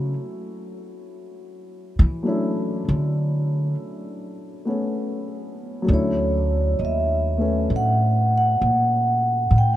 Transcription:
Already playing: C#3 F#3 A3 C#4 E4 F#4
1.99 E3
2.23 F#3 A3 C#4
2.27 D4 E4
2.88 D3
4.65 A3 B3 C#4
5.82 F#3 A3
5.87 D2 C#4 D4
5.93 E4 C#5
6.79 D#2 D#5
6.85 E5
7.38 A3 C#4 B4
7.70 A2
7.76 F#5
8.38 F#5
8.61 A#2
9.51 A2
9.58 G5

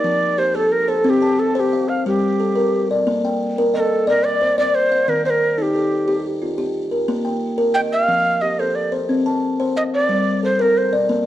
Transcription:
Already playing: D#4 D5
0.04 F3
0.38 G4 C5
0.55 A4
0.72 A#4
0.88 A4 C5
1.04 C4 A4
1.09 G4
1.22 A5
1.39 A4
1.55 A4 C5
1.60 G4
1.73 F5
1.88 F5
2.06 G3 G4
2.40 A4
2.55 A#4
2.91 D5
3.07 A#3
3.25 G5
3.58 A#4
3.74 A#4 D#5
3.80 A4
4.07 A#4 D5
4.25 D5
4.42 C5
4.58 D5
4.75 C5
4.92 F5
5.08 D#3 A#4
5.25 C5
5.30 A#4
5.58 D#4 A4
5.62 G4
5.75 A4
6.08 G4
6.42 F4
6.58 G4
6.91 A#4
7.08 A#3
7.25 G5
7.58 A#4
7.74 D#5 G5
7.93 F5
8.08 F3
8.41 G4 D#5
8.59 A4 C5
8.75 D5
8.92 C5
9.09 C4
9.26 A5
9.60 C5
9.76 D#5 F5
9.94 D5
10.09 G3
10.43 A4 C5
10.59 A#4
10.77 C5
10.93 D5
11.09 A#3

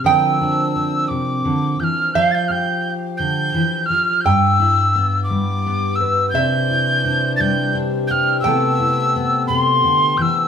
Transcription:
0.04 D3 F3 C4 D4 A#4 G5 E6
0.41 D4
0.76 C4
1.08 C3 D6
1.45 D3
1.80 E3 G6
1.84 F6
2.14 F3 F5 G6
2.31 G6 A6
2.48 G4 F6 G6
3.17 D3 G6
3.51 E3 E5
3.86 F6
3.90 F3
4.21 E6 G6
4.25 G2 G5
4.60 E4
4.95 B3
5.24 D6
5.30 G3
5.66 B3
5.95 E6
6.01 B4
6.30 G6
6.34 C3 E3 D4 C5 E5
6.70 E4
7.05 D4
7.36 G3 A6
7.41 G6
7.75 D4
8.07 G4 F6 G6
8.40 E6
8.44 C3 A3 B3 E4 A4 G5
8.80 E4
9.16 B3
9.47 C3 B5
9.58 C6
9.84 D3
10.17 E3 G6
10.22 E6

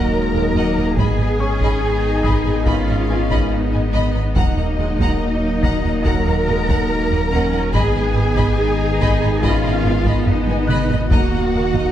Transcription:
Already playing: D#1 D#3 F#3 A#3 D#4 A#4 D#5 F#5 A#5 G#6
0.12 G#3
0.34 D#2 A#4 D#5
0.54 D#2 A#3 D#5 F#5
0.76 D#2 D#5 F#5
0.97 G#1 D#3 G#3 B3 D#4 G#4 D#5 G#5 B5, taiko
1.19 G#1 D#5 B5
1.40 G#1 C#4 B4 C#5 G#5 C#6
1.61 G#1 D#5 B5, taiko
1.83 D#4
2.23 G#1 D#5 B5 D#6, taiko
2.46 G#1 D#5 B5
2.66 G#1 C#4 F4 D#5 F5 B5, taiko
2.88 G#1 D#5 B5
3.09 G#1 B4 G#5
3.30 G#1 D#5 B5, taiko
3.51 B3 D#4 D#5
3.73 G#1 B4 G#5
3.93 G#1 D#5 B5
4.15 G#1 D#5 B5
4.34 D#1 D#2 D#3 F#3 A#3 D#4 D#5 F#5 A#5, taiko
4.56 D#2 F#5 A#5
4.78 D#2 G#3 D#5 F#5
4.99 D#2 F#5 A#5, taiko
5.20 A#3
5.63 D#2 F#5 A#5 A#6, taiko
5.84 D#2 F#5 A#5
6.04 D#2 F#3 A#4 F#5 A#5, taiko
6.26 D#2 F#5 A#5
6.47 D#2 G#3 D#5 F#5
6.69 D#2 F#5 A#5, taiko
6.90 A#3
7.11 D#2 D#5 F#5
7.31 D#2 C#4 F#5 A#5
7.52 D#2 F#5 A#5
7.73 G#1 D#3 G#3 B3 D#4 G#4 D#5 G#5 B5, taiko
7.94 G#1 D#5 B5
8.15 G#1 B4 G#5
8.36 G#1 D#5 B5, taiko
8.60 D#4
9.00 G#1 D#5 B5, taiko
9.21 G#1 D#5 B5
9.42 G#1 C#4 F4 D#5 F5 B5, taiko
9.64 G#1 D#5 B5
9.85 G#1 B3 B4 G#5
10.06 G#1 D#5 B5, taiko
10.27 D#4 D#5, taiko low-mid
10.48 G#1 B4 G#5, taiko high
10.67 G#1 D#5 B5 F#6, taiko mid
10.90 G#1 D#5 B5, taiko low
11.10 D#1 D#2 D#3 A#3 D#4 F#4 D#5 F#5 A#5, taiko
11.32 D#2 D#5 A#5
11.52 D#2 A#4 F#5
11.74 D#2 D#5 A#5, taiko

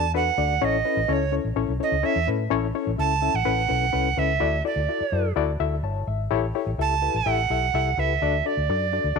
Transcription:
Already playing: E2 A5
0.14 D4 F#4 A4 B4 F#5
0.38 D2 D4 F#4 A4 D5
0.61 A1 C#4 E4 A4 C#5 D#5
0.85 C#4 E4 A4 B4
0.97 A1
1.08 C#2 C#4 E4 A4 C#5
1.13 C#5
1.32 C#4 E4 A4 C#5
1.45 A1
1.56 A1 C#4 E4 A4 C#5
1.68 B1
1.80 C#4 E4 A4 C#5 D#5
1.92 C#2
2.03 C#4 E4 A4 C#5 E5
2.16 E2
2.27 A2 C#4 E4 A4 B4
2.50 A1 C#4 E4 A4 C#5
2.75 C#4 E4 A4 C#5
2.87 A1
2.98 C#2 C#4 E4 A4 E5 A5
3.22 C#4 E4 A4 E5
3.34 A1 F#5
3.45 A1 C#4 E4 A4 B4
3.69 B1 C#4 E4 A4 B4
3.93 C2 C#4 E4 A4 B4
4.17 C#2 C#4 E4 A4 B4 E5
4.40 D2 E4 F#4 A4 D5
4.65 E4 F#4 A4 D5
4.76 D2
4.89 E4 F#4 A4 D5
5.01 muted fingered electric bass stroke
5.12 F#2 E4 F#4 A4 D5
5.36 D2 E4 F#4 A4 D5
5.60 D2 E4 F#4 A4 E5
5.83 G1 C#5 A5
6.07 G#1 E5
6.30 A1 E4 G4 A4 C#5
6.55 E4 G4 A4 C#5
6.67 A1
6.78 C#2 E4 G4 A4 E5 A5
7.02 E4 G4 A4 B4
7.14 A1 F#5
7.26 A1 E4 G4 A4 E5
7.50 B1 E4 G4 A4 E5
7.74 C2 E4 G4 A4 E5
7.97 C#2 E4 G4 A4 B4 E5
8.22 D2 D4 F#4 A4 D5
8.45 D4 F#4 A4 D5
8.57 D2
8.69 F#2 D4 F#4 A4 D5
8.93 D4 F#4 A4 D5
9.04 D2
9.16 D2 D4 F#4 A4 D5

